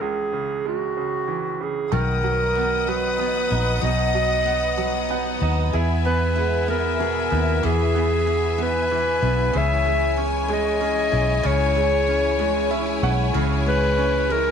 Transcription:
Already playing: grand piano C#3 E3 G#3
0.00 grand piano C#2, clarinet G#4
0.33 grand piano C#3
0.66 grand piano G#3, clarinet F#4
0.97 grand piano C#3
1.28 grand piano E3
1.60 grand piano C#3, clarinet G#4
1.92 fingered electric bass B1, grand piano D#3, steel-string acoustic guitar F#3 D#4, string section B3 D#5 F#5 D#6, clarinet A#4
2.23 steel-string acoustic guitar F#3, grand piano F#3
2.55 steel-string acoustic guitar B3, grand piano B3
2.87 steel-string acoustic guitar F#3, grand piano F#3, clarinet B4
3.18 grand piano B3, steel-string acoustic guitar D#4
3.50 fingered electric bass A#1, steel-string acoustic guitar B3, grand piano D#4
3.81 fingered electric bass B1, grand piano B2, steel-string acoustic guitar F#3 D#4, clarinet D#5
4.14 steel-string acoustic guitar F#3, grand piano F#3
4.46 steel-string acoustic guitar B3, grand piano B3
4.77 steel-string acoustic guitar F#3, grand piano F#3
5.09 grand piano B3 F#5, steel-string acoustic guitar D#4
5.40 fingered electric bass D#2, steel-string acoustic guitar B3, grand piano D#4 D#5
5.71 fingered electric bass E2, grand piano E4, steel-string acoustic guitar G#4, string section E5 G#5
6.05 steel-string acoustic guitar B3, grand piano B3, clarinet B4
6.36 grand piano G#3, steel-string acoustic guitar E4
6.68 grand piano B3, steel-string acoustic guitar B3, clarinet A#4
6.99 grand piano B2, steel-string acoustic guitar G#4
7.31 fingered electric bass D#2, grand piano B3, steel-string acoustic guitar E4
7.63 fingered electric bass E2, grand piano E3, steel-string acoustic guitar E3 G#4, clarinet G#4
7.95 grand piano B3, steel-string acoustic guitar B3
8.27 grand piano E3, steel-string acoustic guitar E4
8.58 grand piano B3, steel-string acoustic guitar B3
8.63 clarinet B4
8.90 grand piano E3, steel-string acoustic guitar G#4
9.22 fingered electric bass B1, grand piano B3, steel-string acoustic guitar E4
9.53 fingered electric bass C#2, grand piano C#3, steel-string acoustic guitar E3 G#4, string section E4 C#5, clarinet E5
9.84 steel-string acoustic guitar G#3, grand piano G#3
10.16 steel-string acoustic guitar C#4, grand piano C#4
10.48 steel-string acoustic guitar G#3, grand piano G#3
10.53 clarinet D#5
10.81 grand piano C#4, steel-string acoustic guitar G#4
11.12 fingered electric bass B1, steel-string acoustic guitar C#4, grand piano E4
11.43 fingered electric bass C#2, grand piano C#3, steel-string acoustic guitar E3 G#4, clarinet C#5
11.75 steel-string acoustic guitar G#3, grand piano G#3
12.07 steel-string acoustic guitar C#4, grand piano C#4
12.39 steel-string acoustic guitar G#3, grand piano G#3
12.71 grand piano C#4 E5, steel-string acoustic guitar G#4
13.03 fingered electric bass B1, steel-string acoustic guitar C#4, grand piano E4 F#5
13.34 fingered electric bass C#2, grand piano C#3, steel-string acoustic guitar E3 G#4
13.66 grand piano G#3, steel-string acoustic guitar G#3, clarinet B4
13.98 grand piano C#4, steel-string acoustic guitar C#4
14.30 grand piano G#3, steel-string acoustic guitar G#3, clarinet A#4

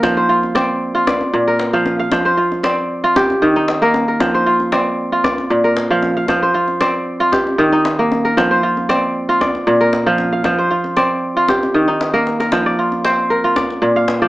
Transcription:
Already playing: kora A#3 C4 D#4 F4 G4 A#4
0.03 kora F3, djembe slap, djembe bass
0.17 kora C5
0.29 kora F4
0.43 djembe tone
0.55 kora C4 D5, djembe slap
0.95 kora F4
1.07 kora D5, djembe slap, djembe bass
1.21 djembe tone
1.33 kora A#2
1.48 kora A#4
1.59 djembe slap
1.73 kora F3 F5
1.86 djembe tone
1.99 kora F5
2.12 kora F3, djembe slap, djembe bass
2.25 kora C5
2.37 kora F4, djembe slap
2.52 djembe slap, djembe tone
2.63 kora C4 D5, djembe slap
2.78 djembe slap
3.04 kora F4
3.16 kora G4, djembe slap, djembe bass
3.30 djembe tone
3.42 kora D#3
3.56 kora D#4, djembe slap
3.68 djembe slap
3.82 kora A#3 A#4, djembe slap
3.94 djembe tone
4.08 kora A#4
4.20 kora F3, djembe slap, djembe bass
4.34 kora C5, djembe slap
4.46 kora F4
4.60 djembe tone
4.72 kora C4 D5, djembe slap
5.12 kora F4
5.24 kora D5, djembe slap, djembe bass
5.38 djembe tone
5.50 kora A#2
5.64 kora A#4
5.77 djembe slap
5.91 kora F3 F5
6.02 djembe tone
6.16 kora F5, djembe slap
6.28 kora F3, djembe slap, djembe bass
6.42 kora C5, djembe slap
6.54 kora F4
6.68 djembe tone
6.80 kora C4 D5, djembe slap
7.20 kora F4
7.32 kora G4, djembe slap, djembe bass
7.47 djembe tone
7.58 kora D#3
7.72 kora D#4
7.85 djembe slap
7.99 kora A#3
8.12 djembe tone
8.25 kora A#4, djembe slap
8.37 kora F3, djembe slap, djembe bass
8.51 kora C5, djembe slap
8.63 kora F4
8.77 djembe tone
8.89 kora C4 D5, djembe slap
9.29 kora F4
9.41 kora D5, djembe slap, djembe bass
9.55 djembe tone
9.67 kora A#2
9.81 kora A#4
9.93 djembe slap
10.06 kora F3 F5
10.18 djembe tone
10.32 kora F5, djembe slap
10.44 kora F3, djembe slap, djembe bass
10.58 kora C5
10.70 kora F4, djembe slap
10.84 djembe tone
10.97 kora C4 D5, djembe slap
11.37 kora F4
11.48 kora G4, djembe slap, djembe bass
11.63 djembe tone
11.74 kora D#3
11.88 kora D#4, djembe slap
12.01 djembe slap
12.14 kora A#3 A#4, djembe bass
12.27 djembe slap
12.40 kora A#4, djembe slap
12.52 kora F3, djembe slap, djembe bass
12.66 kora D5
12.79 kora F4
12.92 djembe tone
13.05 kora C4 C5, djembe slap
13.30 kora A#4
13.44 kora F4
13.56 kora D5, djembe slap, djembe bass
13.70 djembe tone
13.82 kora A#2
13.96 kora F5
14.08 djembe slap
14.22 kora F3 D5

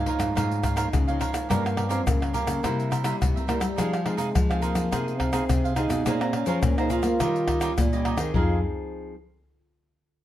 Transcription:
Already playing: nylon-string guitar G#2, trombone D#4
0.06 nylon-string guitar F3 A#3 D#4, cavaquinho F4 A#4 C#5 F5, pandeiro
0.19 nylon-string guitar G#2, pandeiro, tamborim, shaker
0.35 nylon-string guitar G#2 C#3 F3 A#3 D#4, cavaquinho F4 A#4 C#5 F5, pandeiro, tamborim, shaker, surdo
0.51 pandeiro, shaker
0.63 cavaquinho F4 A#4 C#5 F5, pandeiro, tamborim, shaker, surdo
0.76 nylon-string guitar F3 A#3 D#4, cavaquinho F4 A#4 C#5 F5, pandeiro, tamborim, shaker
0.93 nylon-string guitar G#2 C#3, pandeiro, tamborim, shaker, surdo
1.07 nylon-string guitar F3 A#3 D#4, cavaquinho A#4 C#5 F5, pandeiro, shaker
1.19 cavaquinho F4 A#4 C#5 F5, pandeiro, tamborim, shaker
1.32 cavaquinho A#4 C#5 F5, pandeiro, tamborim, shaker
1.49 nylon-string guitar G2 F3 A#3 C#4, trombone A#3, cavaquinho G4 A#4 C#5 F5, pandeiro, tamborim, shaker, surdo
1.65 cavaquinho A#4 C#5 F5, pandeiro, tamborim, shaker
1.76 cavaquinho G4 A#4 C#5 F5, pandeiro, tamborim
1.89 nylon-string guitar F3 A#3 C#4, trombone C4, cavaquinho G4 A#4 C#5 F5, pandeiro, shaker
2.06 nylon-string guitar G2 C#3, trombone A#3, pandeiro, tamborim, shaker, surdo
2.20 cavaquinho A#4 C#5 F5, pandeiro, tamborim, shaker
2.33 nylon-string guitar F3 A#3 C#4, trombone A#3, cavaquinho G4 A#4 C#5 F5, pandeiro, shaker
2.47 nylon-string guitar C#3, pandeiro, tamborim, shaker
2.63 nylon-string guitar C3 G3 A#3 E4, cavaquinho E4 A#4 C5 E5, pandeiro, tamborim, shaker, surdo
2.80 pandeiro, shaker
2.90 cavaquinho E4 A#4 C5 E5, pandeiro, tamborim, shaker
3.04 nylon-string guitar G3 A#3 E4, cavaquinho E4 A#4 C5 E5, pandeiro, tamborim, shaker
3.21 nylon-string guitar G2 C3, pandeiro, tamborim, shaker, surdo
3.36 nylon-string guitar C4, cavaquinho A#4 C5 E5, pandeiro, shaker
3.47 nylon-string guitar G3 A#3 E4, trombone G3, cavaquinho E4 A#4 C5 E5, pandeiro, tamborim, shaker
3.60 nylon-string guitar G3, cavaquinho A#4 C5 E5, pandeiro, tamborim, shaker
3.76 nylon-string guitar F3 C4 D#4 G#4, cavaquinho D#4 G#4 C5 F5, pandeiro, tamborim, shaker, surdo
3.93 cavaquinho G#4 C5 F5, pandeiro, tamborim, shaker
4.04 trombone G#3, nylon-string guitar C4 D#4 G#4, cavaquinho D#4 G#4 C5 F5, pandeiro, tamborim
4.17 nylon-string guitar C3, cavaquinho D#4 G#4 C5 F5, pandeiro, shaker
4.35 nylon-string guitar C3 F3, pandeiro, tamborim, shaker, surdo
4.49 nylon-string guitar C4 D#4 G#4, cavaquinho G#4 C5 F5, pandeiro, tamborim, shaker
4.61 trombone A#3, cavaquinho D#4 G#4 C5 F5, pandeiro, shaker
4.75 nylon-string guitar F3, pandeiro, tamborim, shaker
4.91 nylon-string guitar C3 F3 C4 D#4 G#4, cavaquinho D#4 G#4 C5 F5, pandeiro, tamborim, shaker, surdo
5.08 pandeiro, shaker
5.18 trombone C4, cavaquinho D#4 G#4 C5 F5, pandeiro, tamborim, surdo
5.33 nylon-string guitar C4 D#4 G#4, cavaquinho D#4 G#4 C5 F5, pandeiro, tamborim, shaker
5.49 nylon-string guitar C3, pandeiro, tamborim, shaker, surdo
5.64 cavaquinho G#4 C5 F5, pandeiro, shaker
5.76 nylon-string guitar C4 D#4 G#4, trombone D#4, cavaquinho D#4 G#4 C5 F5, pandeiro, tamborim, shaker
5.89 nylon-string guitar B2, cavaquinho G#4 C5 F5, pandeiro, tamborim, shaker
6.05 nylon-string guitar A#2 A#3 C#4 G#4 C5, cavaquinho G#4 C#5 F5 A#5, pandeiro, tamborim, shaker, surdo
6.21 trombone C4, cavaquinho C#5 F5 A#5, pandeiro, tamborim, shaker
6.33 trombone C#4, cavaquinho G#4 C#5 F5 A#5, pandeiro, tamborim
6.46 nylon-string guitar F3 C#4 G#4 C5, cavaquinho G#4 C#5 F5 A#5, pandeiro, shaker
6.63 nylon-string guitar A#2 F3, pandeiro, tamborim, shaker, surdo
6.78 nylon-string guitar C#4 G#4 C5, trombone D#4, cavaquinho C#5 F5 A#5, pandeiro, tamborim, shaker
6.90 trombone F4, cavaquinho G#4 C#5 F5 A#5, pandeiro, shaker
7.03 nylon-string guitar A#3, pandeiro, tamborim, shaker
7.20 nylon-string guitar D#3 G3 C#4 F4, cavaquinho D#4 G4 C#5 D#5, pandeiro, tamborim, shaker, surdo
7.36 pandeiro, shaker
7.47 cavaquinho D#4 G4 C#5 D#5, pandeiro, tamborim, surdo
7.60 nylon-string guitar G3 C#4 F4, cavaquinho D#4 G4 C#5 D#5, pandeiro, tamborim, shaker
7.78 nylon-string guitar A#2, pandeiro, tamborim, shaker, surdo
7.93 nylon-string guitar G3 C#4 F4, cavaquinho G4 C#5 D#5, pandeiro, shaker
8.05 cavaquinho D#4 G4 C#5 D#5, pandeiro, tamborim
8.17 nylon-string guitar D#3 C4 D#4 G#4, cavaquinho G4 C#5 D#5, pandeiro, tamborim, shaker
8.34 nylon-string guitar F2 F3 C4 D#4 G#4, cavaquinho D#4 G#4 C5 F5, trombone F4, surdo

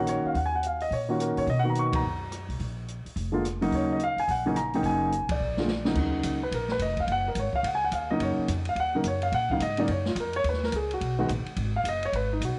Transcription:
Already playing: upright bass A#1, grand piano D#3 A#3 C#4 F#4
0.07 grand piano C#5, cross-stick, closed hi-hat
0.24 grand piano F5, muted upright bass stroke
0.35 upright bass D#2, grand piano F#5, kick, open hi-hat
0.46 grand piano G#5
0.55 grand piano F#5
0.63 grand piano F5, closed hi-hat
0.80 grand piano D#5, open hi-hat
0.91 upright bass A#2, grand piano C#5, kick, open hi-hat
1.09 grand piano D#3 A#3 C#4 F4 F#4
1.20 grand piano A#4, cross-stick, closed hi-hat
1.37 upright bass A#2, grand piano C#5, open hi-hat
1.47 upright bass B2, grand piano D#5, kick, open hi-hat
1.59 grand piano F#5
1.64 grand piano D#3 A#3 B3 F#4
1.70 grand piano A#5
1.75 closed hi-hat
1.79 grand piano C#6
1.93 grand piano A#5, kick, ride
2.03 upright bass F#2
2.32 cross-stick, closed hi-hat
2.49 upright bass B1, open hi-hat
2.60 upright bass A#1, kick, open hi-hat
2.88 closed hi-hat
3.05 muted upright bass stroke, open hi-hat
3.16 upright bass F1, kick, open hi-hat
3.32 grand piano D3 G#3 A#3 F4
3.45 cross-stick, closed hi-hat
3.61 grand piano C#3 F#3 A#3 D#4, open hi-hat
3.71 upright bass D#2, grand piano C#5, kick, open hi-hat
3.92 grand piano D#5
4.00 closed hi-hat
4.04 grand piano F5
4.16 grand piano G#5, muted upright bass stroke, open hi-hat
4.28 upright bass A#1, grand piano F#5, kick, open hi-hat
4.46 grand piano C#3 F#3 A#3 D#4 G#5
4.56 grand piano A#5, cross-stick, closed hi-hat
4.73 grand piano C#3 F#3 A#3 D#4 G5, open hi-hat
4.83 upright bass F#1, grand piano G#5, kick, open hi-hat
5.12 closed hi-hat
5.22 upright bass A#1
5.29 upright bass B1, grand piano D5, kick, ride
5.40 upright bass A#1
5.57 grand piano D3 G#3 A#3 F4, snare
5.68 snare
5.85 grand piano C#3 F#3 A#3 D#4, snare
5.95 upright bass D#2, grand piano C#3 F#3 A#3 D#4, kick, crash
6.23 upright bass C#2, kick, hi-hat pedal, ride
6.43 grand piano B4
6.51 upright bass A#1, grand piano A#4, kick, ride
6.69 grand piano B4, snare
6.79 upright bass F1, grand piano D#5, kick, hi-hat pedal, ride
6.97 grand piano F5, kick, ride
7.07 upright bass F#1, kick, ride
7.12 grand piano F#5
7.28 grand piano A#4
7.35 upright bass G#1, kick, hi-hat pedal, ride
7.39 grand piano C#5
7.53 grand piano F5, muted upright bass stroke, kick
7.63 upright bass C#2, grand piano F#5, kick, ride
7.75 grand piano G#5
7.84 grand piano F#5
7.91 upright bass D#2, grand piano F5, kick, hi-hat pedal, ride
8.11 grand piano C#3 F#3 A#3 D#4 D#5
8.20 upright bass F#2, grand piano C#5, kick, ride
8.38 muted upright bass stroke
8.48 upright bass F2, kick, hi-hat pedal, ride
8.65 grand piano F5, ride
8.75 upright bass D#2, kick, ride
8.80 grand piano F#5
8.95 grand piano C#3 F#3 A#3 D#4 A#4
9.04 upright bass F#2, grand piano C#5, kick, hi-hat pedal, ride
9.22 grand piano F5, ride
9.32 upright bass A#2, grand piano F#5, kick, ride
9.50 grand piano C#3 F#3 A#3 D#4 F5, kick
9.60 upright bass G#2, grand piano D#5, kick, hi-hat pedal, ride
9.77 grand piano C#3 F#3 A#3 D#4 D5, ride
9.88 upright bass F#2, grand piano C#5, kick, ride
10.06 grand piano F4, snare
10.15 upright bass F2, kick, hi-hat pedal, ride
10.20 grand piano A#4
10.33 grand piano C#5, ride
10.44 upright bass D#2, kick, ride
10.49 grand piano B4
10.53 snare
10.63 grand piano A#4, snare
10.72 upright bass C#2, kick, hi-hat pedal, ride
10.76 grand piano G#4
10.91 grand piano F#4, ride
11.01 upright bass B1, kick, ride
11.19 grand piano D#3 G#3 B3 F#4
11.29 upright bass A#1, kick, hi-hat pedal, ride
11.45 muted upright bass stroke, ride
11.56 upright bass G#1, kick, ride
11.76 grand piano F5
11.84 upright bass F#1, kick, hi-hat pedal, ride
11.89 grand piano D#5
12.03 grand piano C#5, ride
12.12 upright bass G#1, grand piano B4, kick, ride
12.33 grand piano D#4
12.40 upright bass B1, kick, hi-hat pedal, ride
12.45 grand piano F#4

